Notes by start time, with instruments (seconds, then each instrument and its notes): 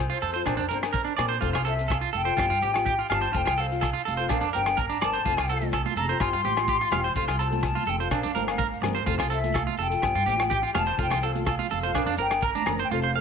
Already playing: flute C5
0.10 clean electric guitar F4, shekere
0.21 upright bass F2, clean electric guitar A4, closed hi-hat, shekere
0.33 steel-string acoustic guitar F4 A4, clean electric guitar C5, closed hi-hat
0.45 upright bass A#1, steel-string acoustic guitar F3 C4 D4 A#4, clean electric guitar D4, kick, cross-stick, closed hi-hat, low agogo, shekere
0.57 upright bass F2, clean electric guitar D4
0.69 upright bass G1, steel-string acoustic guitar F3 C4 D4 A#4, clean electric guitar A#4, closed hi-hat, shekere
0.82 steel-string acoustic guitar C4 D4 A#4, cross-stick, closed hi-hat, low agogo, shekere
0.93 clean electric guitar A#4, kick, closed hi-hat, shekere
1.05 clean electric guitar D4, shekere
1.17 upright bass A#2, steel-string acoustic guitar F3 C4 D4 A#4, clean electric guitar D5, cross-stick, closed hi-hat, low agogo, shekere
1.29 clean electric guitar C5, closed hi-hat, shekere
1.40 upright bass F1, steel-string acoustic guitar F3 C4 F4 A4, clean electric guitar F4, kick, closed hi-hat, shekere
1.53 upright bass C2, clean electric guitar F4, cross-stick, low agogo
1.65 steel-string acoustic guitar C4 F4 A4, clean electric guitar A4, flute E5, closed hi-hat, shekere
1.77 steel-string acoustic guitar C4 A4, closed hi-hat, shekere
1.88 clean electric guitar A4, kick, cross-stick, closed hi-hat, low agogo, shekere
1.93 flute F5
2.01 clean electric guitar F4, shekere
2.13 upright bass F1, clean electric guitar A4, flute G5, closed hi-hat, shekere
2.24 steel-string acoustic guitar C4 F4 A4, clean electric guitar C5, closed hi-hat
2.36 upright bass G1, steel-string acoustic guitar G3 C4 F4, clean electric guitar F4, muted steel-string acoustic guitar stroke, kick, cross-stick, closed hi-hat, low agogo, shekere
2.50 upright bass G2, clean electric guitar F4
2.61 upright bass A1, steel-string acoustic guitar G3 C4 F4 G4, clean electric guitar G4, closed hi-hat, shekere
2.74 steel-string acoustic guitar C4 F4 G4, cross-stick, closed hi-hat, low agogo, shekere
2.86 clean electric guitar G4, kick, closed hi-hat, shekere
2.99 clean electric guitar F4, shekere
3.10 upright bass G1, steel-string acoustic guitar G3 C4 F4 G4, clean electric guitar F5, flute A5, cross-stick, closed hi-hat, low agogo, shekere
3.22 clean electric guitar C5, closed hi-hat, shekere
3.33 upright bass F1, steel-string acoustic guitar F3 C4 F4 A4, clean electric guitar F4, flute G5, kick, closed hi-hat, shekere
3.45 upright bass C2, clean electric guitar F4, cross-stick, low agogo
3.58 steel-string acoustic guitar F3 C4 F4 A4, clean electric guitar A4, flute F5, closed hi-hat, shekere
3.70 steel-string acoustic guitar C4 F4, muted steel-string acoustic guitar stroke, closed hi-hat, shekere
3.81 clean electric guitar A4, kick, cross-stick, closed hi-hat, low agogo, shekere
3.93 clean electric guitar F4, shekere
4.05 upright bass F1, clean electric guitar A4, flute F5, closed hi-hat, shekere
4.17 steel-string acoustic guitar C4 F4 A4, clean electric guitar C5, closed hi-hat, shekere
4.29 upright bass A#1, steel-string acoustic guitar F3 C4 D4 A#4, clean electric guitar D4, kick, cross-stick, closed hi-hat, low agogo, shekere
4.41 upright bass F2, clean electric guitar D4, shekere
4.53 upright bass G1, steel-string acoustic guitar F3 C4 D4 A#4, clean electric guitar A#4, flute G5, closed hi-hat, shekere
4.66 steel-string acoustic guitar C4 D4 A#4, cross-stick, closed hi-hat, low agogo, shekere
4.77 clean electric guitar A#4, flute A#5, kick, closed hi-hat, shekere
4.90 clean electric guitar D4, shekere
5.01 upright bass G1, steel-string acoustic guitar F3 C4 D4 A#4, clean electric guitar D5, flute A5, cross-stick, closed hi-hat, low agogo, shekere
5.13 clean electric guitar C5, closed hi-hat, shekere
5.25 upright bass F1, steel-string acoustic guitar C4 F4 A4, clean electric guitar F4, muted steel-string acoustic guitar stroke, kick, closed hi-hat, shekere
5.37 upright bass C2, clean electric guitar F4, cross-stick, low agogo, shekere
5.49 steel-string acoustic guitar F3 C4 F4 A4, clean electric guitar A4, closed hi-hat, shekere
5.60 steel-string acoustic guitar C4 F4 A4, closed hi-hat, high conga, shekere
5.73 clean electric guitar A4, kick, cross-stick, closed hi-hat, low agogo, shekere
5.86 clean electric guitar F4, high conga, shekere
5.96 upright bass F1, clean electric guitar A4, flute A#5, closed hi-hat, low conga, shekere
6.08 steel-string acoustic guitar C4 F4 A4, clean electric guitar C5, closed hi-hat
6.19 upright bass G1, steel-string acoustic guitar G3 C4 F4 G4, clean electric guitar F4, flute C6, kick, cross-stick, closed hi-hat, low agogo, shekere
6.33 upright bass G2, clean electric guitar F4
6.44 upright bass A1, steel-string acoustic guitar C4 F4 G4, clean electric guitar G4, closed hi-hat, high conga, shekere
6.55 steel-string acoustic guitar F4 G4, cross-stick, closed hi-hat, low agogo, shekere
6.67 clean electric guitar G4, kick, closed hi-hat, shekere
6.80 clean electric guitar F4, shekere
6.91 upright bass E1, steel-string acoustic guitar G3 C4 F4 G4, clean electric guitar F5, cross-stick, closed hi-hat, high conga, low conga, low agogo, shekere
7.04 clean electric guitar C5, closed hi-hat, shekere
7.15 upright bass F1, steel-string acoustic guitar F3 C4 F4 A4, clean electric guitar F4, flute C6, kick, closed hi-hat, shekere
7.28 upright bass C2, clean electric guitar F4, cross-stick, low agogo, shekere
7.38 steel-string acoustic guitar F3 C4 F4 A4, clean electric guitar A4, flute A5, closed hi-hat, shekere
7.50 steel-string acoustic guitar C4 F4 A4, closed hi-hat, high conga
7.63 flute A5, muted clean electric guitar stroke, kick, cross-stick, closed hi-hat, low agogo, shekere
7.75 clean electric guitar F4, high conga, shekere
7.87 upright bass F1, clean electric guitar A4, flute G5, closed hi-hat, low conga, shekere
7.98 steel-string acoustic guitar C4 F4 A4, clean electric guitar C5, flute F5, closed hi-hat
8.10 upright bass A#1, steel-string acoustic guitar F3 C4 D4 A#4, clean electric guitar D4, kick, cross-stick, closed hi-hat, low agogo, shekere
8.23 upright bass F2, clean electric guitar D4
8.34 upright bass G1, steel-string acoustic guitar F3 C4 A#4, clean electric guitar A#4, muted steel-string acoustic guitar stroke, closed hi-hat, high conga, shekere
8.47 steel-string acoustic guitar C4 D4 A#4, cross-stick, closed hi-hat, low agogo, shekere
8.58 clean electric guitar A#4, kick, closed hi-hat, shekere
8.73 shekere
8.81 upright bass G1, steel-string acoustic guitar F3 C4 D4 A#4, muted clean electric guitar stroke, cross-stick, closed hi-hat, high conga, low conga, low agogo, shekere
8.95 clean electric guitar C5, closed hi-hat, shekere
9.05 upright bass F1, steel-string acoustic guitar C4 A4, clean electric guitar F4, muted steel-string acoustic guitar stroke, kick, closed hi-hat, shekere
9.18 upright bass C2, clean electric guitar F4, cross-stick, low agogo, shekere
9.29 steel-string acoustic guitar C4 F4 A4, clean electric guitar A4, flute E5, closed hi-hat, shekere
9.42 steel-string acoustic guitar F4 A4, closed hi-hat, high conga, shekere
9.54 clean electric guitar A4, flute F5, kick, cross-stick, closed hi-hat, low agogo, shekere
9.67 clean electric guitar F4, high conga, shekere
9.78 upright bass F1, clean electric guitar A4, flute G5, closed hi-hat, low conga, shekere
9.90 steel-string acoustic guitar F4 A4, closed hi-hat
10.02 upright bass G1, steel-string acoustic guitar G3 C4 F4, muted clean electric guitar stroke, kick, cross-stick, closed hi-hat, low agogo, shekere
10.15 upright bass G2, clean electric guitar F4
10.25 upright bass A1, steel-string acoustic guitar G3 C4 F4, clean electric guitar G4, closed hi-hat, high conga, shekere
10.37 steel-string acoustic guitar C4 F4, cross-stick, closed hi-hat, low agogo, shekere
10.50 clean electric guitar G4, kick, closed hi-hat, shekere
10.63 clean electric guitar F4, shekere
10.73 upright bass E1, steel-string acoustic guitar G3 C4 F4, clean electric guitar F5, flute A5, cross-stick, closed hi-hat, high conga, low conga, low agogo, shekere
10.87 clean electric guitar C5, closed hi-hat, shekere
10.97 upright bass F1, steel-string acoustic guitar C4 F4 A4, clean electric guitar F4, kick, closed hi-hat, shekere
11.01 flute G5
11.10 upright bass C2, clean electric guitar F4, cross-stick, low conga, low agogo, shekere
11.21 steel-string acoustic guitar C4 F4 A4, clean electric guitar A4, flute F5, closed hi-hat, shekere
11.33 steel-string acoustic guitar F4 A4, closed hi-hat, high conga, shekere
11.47 clean electric guitar A4, flute F5, kick, cross-stick, closed hi-hat, low agogo, shekere
11.59 clean electric guitar F4, high conga, shekere
11.71 upright bass F1, clean electric guitar A4, flute F5, closed hi-hat, low conga, shekere
11.82 steel-string acoustic guitar F4 A4, clean electric guitar C5, closed hi-hat, shekere
11.93 upright bass A#1, steel-string acoustic guitar F3 C4 D4 A#4, clean electric guitar D4, kick, cross-stick, closed hi-hat, low agogo, shekere
12.06 upright bass F2, clean electric guitar D4
12.17 upright bass G1, steel-string acoustic guitar C4 D4 A#4, clean electric guitar A#4, flute G5, closed hi-hat, shekere
12.30 steel-string acoustic guitar D4 A#4, cross-stick, closed hi-hat, low agogo
12.42 clean electric guitar A#4, flute A#5, kick, closed hi-hat, shekere
12.54 clean electric guitar D4, high conga, shekere
12.66 upright bass F#1, steel-string acoustic guitar F3 C4 D4 A#4, muted clean electric guitar stroke, cross-stick, closed hi-hat, high conga, low conga, low agogo, shekere
12.79 clean electric guitar C5, closed hi-hat, shekere
12.83 flute G5
12.90 upright bass F1, steel-string acoustic guitar F3 C4 F4 A4, clean electric guitar F4, flute F5
13.04 clean electric guitar C5
13.13 steel-string acoustic guitar F3 C4 F4 A4, clean electric guitar F5